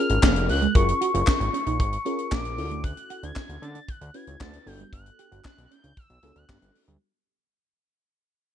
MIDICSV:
0, 0, Header, 1, 7, 480
1, 0, Start_track
1, 0, Tempo, 521739
1, 691, Time_signature, 4, 2, 24, 8
1, 7861, End_track
2, 0, Start_track
2, 0, Title_t, "Analog synth lead"
2, 0, Program_c, 0, 81
2, 0, Note_on_c, 0, 89, 103
2, 420, Note_off_c, 0, 89, 0
2, 461, Note_on_c, 0, 90, 96
2, 680, Note_off_c, 0, 90, 0
2, 700, Note_on_c, 0, 85, 114
2, 2144, Note_on_c, 0, 86, 105
2, 2157, Note_off_c, 0, 85, 0
2, 2610, Note_off_c, 0, 86, 0
2, 2615, Note_on_c, 0, 90, 112
2, 2975, Note_on_c, 0, 92, 120
2, 2988, Note_off_c, 0, 90, 0
2, 3338, Note_on_c, 0, 93, 118
2, 3352, Note_off_c, 0, 92, 0
2, 3578, Note_on_c, 0, 90, 110
2, 3592, Note_off_c, 0, 93, 0
2, 3815, Note_on_c, 0, 92, 109
2, 3829, Note_off_c, 0, 90, 0
2, 4052, Note_on_c, 0, 93, 117
2, 4066, Note_off_c, 0, 92, 0
2, 4294, Note_on_c, 0, 91, 106
2, 4308, Note_off_c, 0, 93, 0
2, 4533, Note_off_c, 0, 91, 0
2, 4539, Note_on_c, 0, 90, 116
2, 4982, Note_off_c, 0, 90, 0
2, 5018, Note_on_c, 0, 90, 111
2, 5182, Note_off_c, 0, 90, 0
2, 5205, Note_on_c, 0, 90, 76
2, 5259, Note_on_c, 0, 91, 107
2, 5273, Note_off_c, 0, 90, 0
2, 5503, Note_on_c, 0, 88, 108
2, 5517, Note_off_c, 0, 91, 0
2, 5861, Note_on_c, 0, 90, 93
2, 5875, Note_off_c, 0, 88, 0
2, 6216, Note_off_c, 0, 90, 0
2, 7861, End_track
3, 0, Start_track
3, 0, Title_t, "FM electric piano"
3, 0, Program_c, 1, 5
3, 0, Note_on_c, 1, 61, 78
3, 0, Note_on_c, 1, 65, 71
3, 0, Note_on_c, 1, 68, 75
3, 0, Note_on_c, 1, 70, 86
3, 508, Note_off_c, 1, 61, 0
3, 508, Note_off_c, 1, 65, 0
3, 509, Note_off_c, 1, 68, 0
3, 511, Note_off_c, 1, 70, 0
3, 688, Note_on_c, 1, 61, 78
3, 692, Note_on_c, 1, 65, 70
3, 694, Note_on_c, 1, 68, 67
3, 696, Note_on_c, 1, 70, 83
3, 1405, Note_off_c, 1, 61, 0
3, 1407, Note_off_c, 1, 65, 0
3, 1408, Note_off_c, 1, 68, 0
3, 1409, Note_off_c, 1, 70, 0
3, 1889, Note_on_c, 1, 61, 99
3, 1891, Note_on_c, 1, 65, 97
3, 1895, Note_on_c, 1, 68, 92
3, 1898, Note_on_c, 1, 70, 110
3, 2356, Note_off_c, 1, 61, 0
3, 2362, Note_off_c, 1, 65, 0
3, 2367, Note_on_c, 1, 61, 77
3, 2369, Note_on_c, 1, 64, 76
3, 2373, Note_off_c, 1, 68, 0
3, 2373, Note_on_c, 1, 65, 60
3, 2374, Note_off_c, 1, 70, 0
3, 2374, Note_on_c, 1, 69, 85
3, 2429, Note_off_c, 1, 65, 0
3, 2429, Note_on_c, 1, 66, 72
3, 3137, Note_off_c, 1, 61, 0
3, 3138, Note_off_c, 1, 64, 0
3, 3140, Note_off_c, 1, 69, 0
3, 3168, Note_off_c, 1, 66, 0
3, 3808, Note_on_c, 1, 61, 85
3, 3810, Note_on_c, 1, 64, 74
3, 3813, Note_on_c, 1, 66, 78
3, 3816, Note_on_c, 1, 71, 91
3, 4282, Note_off_c, 1, 66, 0
3, 4289, Note_on_c, 1, 59, 85
3, 4290, Note_off_c, 1, 61, 0
3, 4291, Note_off_c, 1, 64, 0
3, 4291, Note_on_c, 1, 62, 77
3, 4293, Note_on_c, 1, 66, 72
3, 4294, Note_off_c, 1, 71, 0
3, 4294, Note_on_c, 1, 69, 80
3, 5058, Note_off_c, 1, 59, 0
3, 5059, Note_off_c, 1, 62, 0
3, 5060, Note_off_c, 1, 66, 0
3, 5061, Note_off_c, 1, 69, 0
3, 5733, Note_on_c, 1, 59, 83
3, 5735, Note_on_c, 1, 62, 74
3, 5736, Note_on_c, 1, 66, 78
3, 5740, Note_on_c, 1, 69, 96
3, 6269, Note_off_c, 1, 59, 0
3, 6270, Note_off_c, 1, 62, 0
3, 6271, Note_off_c, 1, 66, 0
3, 6272, Note_off_c, 1, 69, 0
3, 7861, End_track
4, 0, Start_track
4, 0, Title_t, "Clean electric guitar"
4, 0, Program_c, 2, 27
4, 211, Note_on_c, 2, 58, 79
4, 302, Note_off_c, 2, 58, 0
4, 571, Note_on_c, 2, 56, 79
4, 662, Note_off_c, 2, 56, 0
4, 929, Note_on_c, 2, 66, 70
4, 1021, Note_off_c, 2, 66, 0
4, 1051, Note_on_c, 2, 65, 85
4, 1142, Note_off_c, 2, 65, 0
4, 1409, Note_on_c, 2, 61, 73
4, 1501, Note_off_c, 2, 61, 0
4, 1532, Note_on_c, 2, 63, 83
4, 1623, Note_off_c, 2, 63, 0
4, 1892, Note_on_c, 2, 61, 83
4, 1983, Note_off_c, 2, 61, 0
4, 2132, Note_on_c, 2, 58, 87
4, 2223, Note_off_c, 2, 58, 0
4, 2492, Note_on_c, 2, 57, 83
4, 2583, Note_off_c, 2, 57, 0
4, 2853, Note_on_c, 2, 66, 81
4, 2944, Note_off_c, 2, 66, 0
4, 2974, Note_on_c, 2, 62, 80
4, 3064, Note_off_c, 2, 62, 0
4, 3333, Note_on_c, 2, 61, 78
4, 3423, Note_off_c, 2, 61, 0
4, 3453, Note_on_c, 2, 62, 77
4, 3543, Note_off_c, 2, 62, 0
4, 3813, Note_on_c, 2, 61, 82
4, 3904, Note_off_c, 2, 61, 0
4, 4053, Note_on_c, 2, 57, 90
4, 4143, Note_off_c, 2, 57, 0
4, 4414, Note_on_c, 2, 55, 84
4, 4504, Note_off_c, 2, 55, 0
4, 4776, Note_on_c, 2, 67, 81
4, 4865, Note_off_c, 2, 67, 0
4, 4895, Note_on_c, 2, 66, 79
4, 4985, Note_off_c, 2, 66, 0
4, 5251, Note_on_c, 2, 61, 84
4, 5342, Note_off_c, 2, 61, 0
4, 5370, Note_on_c, 2, 62, 76
4, 5461, Note_off_c, 2, 62, 0
4, 5730, Note_on_c, 2, 61, 72
4, 5822, Note_off_c, 2, 61, 0
4, 5970, Note_on_c, 2, 59, 89
4, 6062, Note_off_c, 2, 59, 0
4, 6334, Note_on_c, 2, 55, 85
4, 6424, Note_off_c, 2, 55, 0
4, 7861, End_track
5, 0, Start_track
5, 0, Title_t, "Analog synth bass"
5, 0, Program_c, 3, 38
5, 91, Note_on_c, 3, 32, 93
5, 173, Note_off_c, 3, 32, 0
5, 212, Note_on_c, 3, 29, 100
5, 453, Note_on_c, 3, 37, 97
5, 467, Note_off_c, 3, 29, 0
5, 616, Note_off_c, 3, 37, 0
5, 691, Note_on_c, 3, 30, 107
5, 855, Note_off_c, 3, 30, 0
5, 1053, Note_on_c, 3, 30, 104
5, 1134, Note_off_c, 3, 30, 0
5, 1292, Note_on_c, 3, 32, 99
5, 1373, Note_off_c, 3, 32, 0
5, 1533, Note_on_c, 3, 34, 92
5, 1655, Note_on_c, 3, 32, 109
5, 1669, Note_off_c, 3, 34, 0
5, 1817, Note_off_c, 3, 32, 0
5, 2133, Note_on_c, 3, 34, 89
5, 2373, Note_on_c, 3, 38, 113
5, 2387, Note_off_c, 3, 34, 0
5, 2700, Note_off_c, 3, 38, 0
5, 2973, Note_on_c, 3, 38, 90
5, 3054, Note_off_c, 3, 38, 0
5, 3213, Note_on_c, 3, 38, 93
5, 3294, Note_off_c, 3, 38, 0
5, 3332, Note_on_c, 3, 50, 105
5, 3495, Note_off_c, 3, 50, 0
5, 3693, Note_on_c, 3, 38, 105
5, 3774, Note_off_c, 3, 38, 0
5, 3932, Note_on_c, 3, 37, 88
5, 4013, Note_off_c, 3, 37, 0
5, 4054, Note_on_c, 3, 38, 108
5, 4217, Note_off_c, 3, 38, 0
5, 4292, Note_on_c, 3, 31, 108
5, 4455, Note_off_c, 3, 31, 0
5, 4532, Note_on_c, 3, 31, 107
5, 4695, Note_off_c, 3, 31, 0
5, 4892, Note_on_c, 3, 31, 95
5, 4973, Note_off_c, 3, 31, 0
5, 5133, Note_on_c, 3, 35, 81
5, 5214, Note_off_c, 3, 35, 0
5, 5372, Note_on_c, 3, 37, 87
5, 5453, Note_off_c, 3, 37, 0
5, 5611, Note_on_c, 3, 35, 93
5, 5693, Note_off_c, 3, 35, 0
5, 5731, Note_on_c, 3, 37, 94
5, 5813, Note_off_c, 3, 37, 0
5, 5850, Note_on_c, 3, 38, 90
5, 5932, Note_off_c, 3, 38, 0
5, 5973, Note_on_c, 3, 43, 111
5, 6054, Note_off_c, 3, 43, 0
5, 6090, Note_on_c, 3, 31, 96
5, 6172, Note_off_c, 3, 31, 0
5, 6329, Note_on_c, 3, 38, 100
5, 6412, Note_off_c, 3, 38, 0
5, 7861, End_track
6, 0, Start_track
6, 0, Title_t, "Muted clean electric guitar strokes"
6, 451, Note_on_c, 9, 29, 50
6, 543, Note_off_c, 9, 29, 0
6, 811, Note_on_c, 9, 29, 51
6, 903, Note_off_c, 9, 29, 0
6, 1173, Note_on_c, 9, 29, 49
6, 1265, Note_off_c, 9, 29, 0
6, 2373, Note_on_c, 9, 29, 51
6, 2465, Note_off_c, 9, 29, 0
6, 2733, Note_on_c, 9, 29, 53
6, 2825, Note_off_c, 9, 29, 0
6, 4296, Note_on_c, 9, 29, 48
6, 4388, Note_off_c, 9, 29, 0
6, 4653, Note_on_c, 9, 29, 50
6, 4745, Note_off_c, 9, 29, 0
6, 6213, Note_on_c, 9, 29, 48
6, 6305, Note_off_c, 9, 29, 0
6, 7861, End_track
7, 0, Start_track
7, 0, Title_t, "Drums"
7, 87, Note_on_c, 9, 42, 54
7, 179, Note_off_c, 9, 42, 0
7, 212, Note_on_c, 9, 36, 113
7, 212, Note_on_c, 9, 39, 97
7, 217, Note_off_c, 9, 39, 0
7, 217, Note_on_c, 9, 38, 127
7, 217, Note_on_c, 9, 39, 95
7, 304, Note_off_c, 9, 36, 0
7, 309, Note_off_c, 9, 38, 0
7, 309, Note_off_c, 9, 39, 0
7, 332, Note_on_c, 9, 42, 60
7, 424, Note_off_c, 9, 42, 0
7, 453, Note_on_c, 9, 46, 81
7, 545, Note_off_c, 9, 46, 0
7, 573, Note_on_c, 9, 42, 45
7, 665, Note_off_c, 9, 42, 0
7, 692, Note_on_c, 9, 36, 116
7, 693, Note_on_c, 9, 42, 90
7, 784, Note_off_c, 9, 36, 0
7, 785, Note_off_c, 9, 42, 0
7, 815, Note_on_c, 9, 42, 60
7, 907, Note_off_c, 9, 42, 0
7, 934, Note_on_c, 9, 42, 75
7, 1026, Note_off_c, 9, 42, 0
7, 1054, Note_on_c, 9, 42, 58
7, 1146, Note_off_c, 9, 42, 0
7, 1167, Note_on_c, 9, 39, 94
7, 1174, Note_on_c, 9, 36, 127
7, 1177, Note_off_c, 9, 39, 0
7, 1177, Note_on_c, 9, 39, 93
7, 1178, Note_on_c, 9, 38, 127
7, 1266, Note_off_c, 9, 36, 0
7, 1269, Note_off_c, 9, 39, 0
7, 1270, Note_off_c, 9, 38, 0
7, 1296, Note_on_c, 9, 42, 59
7, 1388, Note_off_c, 9, 42, 0
7, 1417, Note_on_c, 9, 42, 69
7, 1509, Note_off_c, 9, 42, 0
7, 1532, Note_on_c, 9, 42, 57
7, 1624, Note_off_c, 9, 42, 0
7, 1653, Note_on_c, 9, 42, 79
7, 1655, Note_on_c, 9, 36, 112
7, 1745, Note_off_c, 9, 42, 0
7, 1747, Note_off_c, 9, 36, 0
7, 1773, Note_on_c, 9, 42, 54
7, 1865, Note_off_c, 9, 42, 0
7, 1892, Note_on_c, 9, 42, 76
7, 1984, Note_off_c, 9, 42, 0
7, 2011, Note_on_c, 9, 42, 54
7, 2103, Note_off_c, 9, 42, 0
7, 2133, Note_on_c, 9, 36, 118
7, 2133, Note_on_c, 9, 39, 94
7, 2138, Note_off_c, 9, 39, 0
7, 2138, Note_on_c, 9, 39, 93
7, 2139, Note_on_c, 9, 38, 120
7, 2225, Note_off_c, 9, 36, 0
7, 2230, Note_off_c, 9, 39, 0
7, 2231, Note_off_c, 9, 38, 0
7, 2253, Note_on_c, 9, 42, 60
7, 2345, Note_off_c, 9, 42, 0
7, 2375, Note_on_c, 9, 46, 82
7, 2467, Note_off_c, 9, 46, 0
7, 2495, Note_on_c, 9, 42, 49
7, 2587, Note_off_c, 9, 42, 0
7, 2612, Note_on_c, 9, 36, 115
7, 2612, Note_on_c, 9, 42, 96
7, 2704, Note_off_c, 9, 36, 0
7, 2704, Note_off_c, 9, 42, 0
7, 2732, Note_on_c, 9, 42, 55
7, 2824, Note_off_c, 9, 42, 0
7, 2852, Note_on_c, 9, 42, 78
7, 2944, Note_off_c, 9, 42, 0
7, 2973, Note_on_c, 9, 42, 58
7, 3065, Note_off_c, 9, 42, 0
7, 3089, Note_on_c, 9, 39, 97
7, 3094, Note_off_c, 9, 39, 0
7, 3094, Note_on_c, 9, 36, 122
7, 3094, Note_on_c, 9, 39, 93
7, 3095, Note_on_c, 9, 38, 120
7, 3186, Note_off_c, 9, 36, 0
7, 3186, Note_off_c, 9, 39, 0
7, 3187, Note_off_c, 9, 38, 0
7, 3214, Note_on_c, 9, 42, 57
7, 3306, Note_off_c, 9, 42, 0
7, 3336, Note_on_c, 9, 42, 73
7, 3428, Note_off_c, 9, 42, 0
7, 3449, Note_on_c, 9, 42, 58
7, 3541, Note_off_c, 9, 42, 0
7, 3572, Note_on_c, 9, 42, 81
7, 3574, Note_on_c, 9, 36, 117
7, 3664, Note_off_c, 9, 42, 0
7, 3666, Note_off_c, 9, 36, 0
7, 3692, Note_on_c, 9, 42, 57
7, 3784, Note_off_c, 9, 42, 0
7, 3810, Note_on_c, 9, 42, 78
7, 3902, Note_off_c, 9, 42, 0
7, 3930, Note_on_c, 9, 42, 54
7, 4022, Note_off_c, 9, 42, 0
7, 4053, Note_on_c, 9, 36, 109
7, 4054, Note_on_c, 9, 39, 96
7, 4058, Note_off_c, 9, 39, 0
7, 4058, Note_on_c, 9, 39, 97
7, 4059, Note_on_c, 9, 38, 119
7, 4145, Note_off_c, 9, 36, 0
7, 4150, Note_off_c, 9, 39, 0
7, 4151, Note_off_c, 9, 38, 0
7, 4172, Note_on_c, 9, 42, 62
7, 4264, Note_off_c, 9, 42, 0
7, 4294, Note_on_c, 9, 46, 86
7, 4386, Note_off_c, 9, 46, 0
7, 4414, Note_on_c, 9, 42, 46
7, 4506, Note_off_c, 9, 42, 0
7, 4532, Note_on_c, 9, 36, 111
7, 4532, Note_on_c, 9, 42, 92
7, 4624, Note_off_c, 9, 36, 0
7, 4624, Note_off_c, 9, 42, 0
7, 4655, Note_on_c, 9, 42, 62
7, 4747, Note_off_c, 9, 42, 0
7, 4773, Note_on_c, 9, 42, 73
7, 4865, Note_off_c, 9, 42, 0
7, 4894, Note_on_c, 9, 42, 56
7, 4986, Note_off_c, 9, 42, 0
7, 5008, Note_on_c, 9, 39, 95
7, 5014, Note_on_c, 9, 36, 122
7, 5016, Note_off_c, 9, 39, 0
7, 5016, Note_on_c, 9, 39, 98
7, 5017, Note_on_c, 9, 38, 126
7, 5106, Note_off_c, 9, 36, 0
7, 5108, Note_off_c, 9, 39, 0
7, 5109, Note_off_c, 9, 38, 0
7, 5135, Note_on_c, 9, 42, 57
7, 5227, Note_off_c, 9, 42, 0
7, 5257, Note_on_c, 9, 42, 73
7, 5349, Note_off_c, 9, 42, 0
7, 5370, Note_on_c, 9, 42, 53
7, 5462, Note_off_c, 9, 42, 0
7, 5491, Note_on_c, 9, 42, 78
7, 5494, Note_on_c, 9, 36, 127
7, 5583, Note_off_c, 9, 42, 0
7, 5586, Note_off_c, 9, 36, 0
7, 5610, Note_on_c, 9, 42, 51
7, 5702, Note_off_c, 9, 42, 0
7, 5727, Note_on_c, 9, 42, 78
7, 5819, Note_off_c, 9, 42, 0
7, 5849, Note_on_c, 9, 42, 56
7, 5941, Note_off_c, 9, 42, 0
7, 5972, Note_on_c, 9, 36, 116
7, 5975, Note_on_c, 9, 39, 97
7, 5977, Note_off_c, 9, 39, 0
7, 5977, Note_on_c, 9, 38, 116
7, 5977, Note_on_c, 9, 39, 98
7, 6064, Note_off_c, 9, 36, 0
7, 6069, Note_off_c, 9, 38, 0
7, 6069, Note_off_c, 9, 39, 0
7, 6091, Note_on_c, 9, 42, 61
7, 6183, Note_off_c, 9, 42, 0
7, 6212, Note_on_c, 9, 46, 82
7, 6304, Note_off_c, 9, 46, 0
7, 6334, Note_on_c, 9, 42, 47
7, 6426, Note_off_c, 9, 42, 0
7, 7861, End_track
0, 0, End_of_file